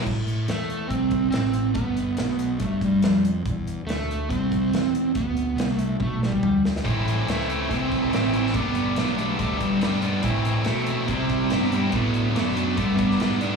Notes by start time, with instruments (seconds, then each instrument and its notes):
0.07 fingered electric bass A2, kick, crash
0.28 closed hi-hat
0.48 fingered electric bass E2, electric slide guitar A3, snare, closed hi-hat
0.70 closed hi-hat
0.88 fingered electric bass C2, electric slide guitar C4, kick, closed hi-hat
1.11 kick, closed hi-hat
1.30 fingered electric bass A1, electric slide guitar C4, snare, closed hi-hat
1.53 closed hi-hat
1.74 fingered electric bass G1, electric slide guitar B3, kick, closed hi-hat
1.97 closed hi-hat
2.17 fingered electric bass B1, snare, closed hi-hat
2.39 closed hi-hat
2.60 fingered electric bass G2, electric slide guitar A3, kick, closed hi-hat
2.81 electric slide guitar G3, kick, closed hi-hat
3.02 fingered electric bass F2, snare, closed hi-hat
3.25 closed hi-hat
3.46 fingered electric bass E2, kick, closed hi-hat
3.67 closed hi-hat
3.85 fingered electric bass D2, electric slide guitar A3, closed hi-hat
3.90 snare
4.11 closed hi-hat
4.29 fingered electric bass C2, electric slide guitar C4, kick, closed hi-hat
4.52 kick, closed hi-hat
4.71 fingered electric bass E2, snare, closed hi-hat
4.95 closed hi-hat
5.15 fingered electric bass D2, electric slide guitar B3, kick, closed hi-hat
5.37 closed hi-hat
5.56 fingered electric bass C2, closed hi-hat
5.60 snare
5.79 electric slide guitar A3, closed hi-hat
6.00 fingered electric bass B1, electric slide guitar A3, kick, high tom
6.23 electric slide guitar G3, snare
6.32 kick
6.43 fingered electric bass D2, mid tom
6.65 snare
6.76 snare
6.84 fingered electric bass A1, distorted electric guitar A2 E3 A3 C4 E4, kick, closed hi-hat
7.08 closed hi-hat
7.27 fingered electric bass C#2, distorted electric guitar A2 E3 A3 C4 E4, snare, closed hi-hat
7.32 electric slide guitar A3
7.47 distorted electric guitar A2 E3 A3 C4 E4, closed hi-hat
7.68 fingered electric bass C2, distorted electric guitar A2 E3 A3 C4 E4, kick, closed hi-hat
7.73 electric slide guitar C4
7.92 kick, closed hi-hat
8.10 fingered electric bass A1, distorted electric guitar A2 E3 A3 C4 E4, closed hi-hat
8.15 snare
8.33 distorted electric guitar A2 E3 A3 C4 E4, closed hi-hat
8.47 snare
8.54 fingered electric bass G1, distorted electric guitar G2 D3 G3 B3 D4, electric slide guitar B3, kick, closed hi-hat
8.75 closed hi-hat
8.96 fingered electric bass B1, distorted electric guitar G2 D3 G3 B3, snare, closed hi-hat
9.00 distorted electric guitar D4
9.18 distorted electric guitar G2 D3 G3 B3 D4, electric slide guitar A3, closed hi-hat
9.39 fingered electric bass D2, distorted electric guitar G2 D3 G3 B3 D4, electric slide guitar A3, kick, closed hi-hat
9.57 electric slide guitar G3, muted fingered electric bass stroke, kick, closed hi-hat
9.81 fingered electric bass G2, distorted electric guitar G2 D3 G3 B3 D4, snare, closed hi-hat
10.02 distorted electric guitar G2 D3 G3 B3 D4, closed hi-hat
10.22 distorted electric guitar A2 E3 A3 C4 E4, fingered electric bass A2, kick, closed hi-hat
10.45 closed hi-hat
10.65 distorted electric guitar A2 E3 A3 C4 E4, fingered electric bass B2, electric slide guitar A3, snare, closed hi-hat
10.87 distorted electric guitar A2 E3 A3 C4 E4, closed hi-hat
11.06 distorted electric guitar C3 G3 C4 E4, fingered electric bass C3, electric slide guitar C4, kick, closed hi-hat
11.29 kick, closed hi-hat
11.50 fingered electric bass G2, distorted electric guitar C3 G3 C4 E4, snare, closed hi-hat
11.62 electric slide guitar B3
11.72 distorted electric guitar C3 G3 C4 E4, closed hi-hat
11.90 fingered electric bass A2, electric slide guitar B3, kick, closed hi-hat
11.94 distorted electric guitar D3 F#3 A3 D4
12.14 closed hi-hat
12.32 fingered electric bass F#2, distorted electric guitar D3 F#3 D4, electric slide guitar B3
12.36 distorted electric guitar A3, snare, closed hi-hat
12.57 distorted electric guitar D3 F#3 A3 D4, closed hi-hat
12.76 distorted electric guitar G2 D3 G3 B3 D4, fingered electric bass G2, electric slide guitar A3, kick, closed hi-hat
12.96 electric slide guitar B3, kick, closed hi-hat
13.11 snare
13.20 distorted electric guitar G2 D3 G3 B3 D4, fingered electric bass G#2, snare, closed hi-hat
13.40 distorted electric guitar G2 D3 G3 B3 D4, closed hi-hat